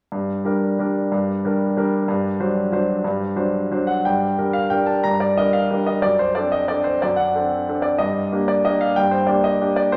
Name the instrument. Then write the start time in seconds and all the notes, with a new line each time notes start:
grand piano
0.12 G2
0.45 G3 D4 A#4
0.79 G3 D4 A#4
1.12 G2
1.45 G3 D4 A#4
1.77 G3 D4 A#4
2.08 G2
2.40 F#3 D4 C5
2.72 F#3 D4 C5
3.04 G2
3.36 F#3 D4 C5
3.71 F#3 D4 C5
3.87 F#5
4.05 G2 G5
4.38 G3 D4 A#4
4.53 F5
4.70 G3 D4 A#4 G5
4.86 A5
5.04 G2 A#5
5.20 D5
5.37 G3 D4 A#4 D#5
5.53 F5
5.71 G3 D4 A#4
5.86 D#5
6.02 F#2 D5
6.19 C5
6.35 C4 D4 A4 D5
6.52 D#5
6.68 C4 D4 A4 D5
6.84 C5
7.02 F#2 D5
7.16 F#5
7.35 C4 D4 A4
7.69 C4 D4 A4
7.82 D5
7.98 G2 D#5
8.32 A#3 D4 G4
8.48 D5
8.65 A#3 D4 G4 D#5
8.81 F5
8.96 G2 G5
9.11 C5
9.27 A#3 D4 G4 D5
9.44 D#5
9.61 A#3 D4 G4
9.76 D5
9.92 A#1 C5